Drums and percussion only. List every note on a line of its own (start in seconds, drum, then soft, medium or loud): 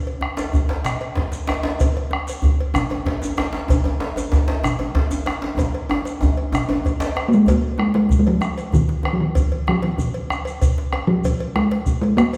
0.07 cowbell soft
0.21 bombo rim medium
0.21 djembe tone medium
0.37 cowbell soft
0.37 djembe slap medium
0.37 shekere medium
0.53 bombo rim soft
0.53 bombo low loud
0.53 djembe bass medium
0.53 shekere soft
0.69 cowbell soft
0.69 djembe slap medium
0.84 bombo rim loud
0.84 djembe slap medium
0.84 djembe tone medium
0.84 shekere medium
1.01 bombo rim soft
1.01 cowbell medium
1.15 bombo low loud
1.15 cowbell soft
1.15 djembe slap medium
1.15 djembe slap soft
1.15 djembe bass medium
1.32 djembe slap medium
1.32 shekere soft
1.47 bombo rim loud
1.47 cowbell soft
1.47 djembe slap medium
1.47 djembe tone medium
1.63 bombo rim soft
1.63 djembe slap medium
1.80 bombo low loud
1.80 cowbell medium
1.80 djembe bass medium
1.80 shekere medium
1.97 cowbell medium
2.11 bombo rim loud
2.11 djembe tone medium
2.27 cowbell soft
2.27 djembe slap medium
2.27 shekere medium
2.42 bombo rim soft
2.42 bombo low loud
2.42 djembe bass medium
2.42 shekere soft
2.60 cowbell soft
2.74 bombo rim loud
2.74 djembe tone loud
2.74 djembe tone medium
2.74 shekere medium
2.90 bombo rim soft
2.90 cowbell medium
2.90 djembe tone medium
3.06 bombo low loud
3.06 cowbell medium
3.06 djembe slap soft
3.06 djembe slap medium
3.06 djembe bass medium
3.22 djembe slap medium
3.22 djembe tone medium
3.22 shekere medium
3.37 bombo rim medium
3.37 cowbell medium
3.37 djembe slap medium
3.37 djembe tone medium
3.53 bombo rim soft
3.53 djembe slap medium
3.68 bombo low medium
3.68 cowbell medium
3.68 djembe tone loud
3.68 djembe bass medium
3.68 shekere medium
3.84 cowbell soft
3.84 djembe tone medium
4.00 djembe slap medium
4.00 djembe tone medium
4.16 cowbell soft
4.16 djembe slap medium
4.16 djembe tone medium
4.16 shekere soft
4.32 bombo rim soft
4.32 bombo low loud
4.32 djembe slap medium
4.32 djembe bass medium
4.32 shekere soft
4.48 cowbell medium
4.48 djembe slap medium
4.63 bombo rim loud
4.63 djembe tone loud
4.63 djembe tone medium
4.63 shekere medium
4.79 bombo rim soft
4.79 cowbell medium
4.79 djembe tone medium
4.95 bombo low loud
4.95 cowbell soft
4.95 djembe slap soft
4.95 djembe slap medium
4.95 djembe bass medium
5.11 djembe slap medium
5.11 djembe tone medium
5.11 shekere soft
5.26 bombo rim loud
5.26 cowbell soft
5.26 djembe slap medium
5.42 bombo rim soft
5.42 djembe slap medium
5.57 bombo low loud
5.57 cowbell medium
5.57 djembe slap soft
5.57 djembe tone loud
5.57 djembe bass medium
5.57 shekere medium
5.75 bombo rim soft
5.75 cowbell soft
5.89 bombo rim loud
5.89 djembe tone loud
6.05 cowbell soft
6.05 djembe slap medium
6.05 shekere soft
6.21 bombo rim soft
6.21 bombo low loud
6.21 djembe slap soft
6.21 djembe tone loud
6.21 djembe bass medium
6.21 shekere soft
6.37 bombo rim soft
6.37 cowbell medium
6.52 bombo rim loud
6.52 djembe tone loud
6.52 djembe tone medium
6.52 shekere medium
6.69 cowbell medium
6.69 djembe tone loud
6.85 bombo rim soft
6.85 bombo low loud
6.85 cowbell soft
6.85 djembe bass medium
6.85 shekere soft
7.00 bombo rim soft
7.00 djembe slap loud
7.00 djembe slap medium
7.00 shekere soft
7.16 bombo rim loud
7.16 cowbell medium
7.16 djembe tone medium
7.33 shekere soft
7.46 bombo low loud
7.46 cowbell medium
7.46 djembe bass medium
7.46 shekere medium
7.78 bombo rim loud
7.78 djembe tone medium
7.94 bombo rim soft
7.94 cowbell medium
7.94 djembe slap medium
8.09 bombo low loud
8.09 djembe slap soft
8.09 djembe bass medium
8.09 shekere medium
8.27 cowbell medium
8.41 bombo rim loud
8.41 djembe tone medium
8.41 shekere soft
8.58 cowbell medium
8.58 shekere soft
8.72 bombo low loud
8.72 djembe slap soft
8.72 djembe bass medium
8.72 shekere medium
8.89 djembe slap medium
9.03 bombo rim loud
9.03 cowbell medium
9.03 djembe tone medium
9.35 bombo low loud
9.35 cowbell medium
9.35 djembe bass medium
9.35 shekere medium
9.52 cowbell soft
9.67 bombo rim loud
9.67 djembe tone medium
9.82 bombo rim soft
9.82 cowbell medium
9.82 djembe slap medium
9.98 bombo low loud
9.98 djembe slap soft
9.98 djembe bass medium
9.98 shekere medium
10.14 cowbell soft
10.30 bombo rim loud
10.30 djembe tone medium
10.30 shekere soft
10.45 cowbell medium
10.45 shekere soft
10.61 bombo low medium
10.61 cowbell medium
10.61 djembe slap soft
10.61 djembe bass medium
10.61 shekere medium
10.78 djembe slap medium
10.93 bombo rim loud
10.93 cowbell medium
10.93 djembe tone medium
11.24 bombo low loud
11.24 cowbell medium
11.24 djembe bass medium
11.24 shekere medium
11.40 cowbell medium
11.56 bombo rim loud
11.56 djembe tone medium
11.71 bombo rim soft
11.71 cowbell medium
11.71 djembe slap medium
11.86 bombo low loud
11.86 djembe slap soft
11.86 shekere medium
12.03 cowbell medium
12.18 bombo rim loud
12.18 djembe tone medium
12.18 shekere soft
12.33 cowbell medium
12.33 shekere soft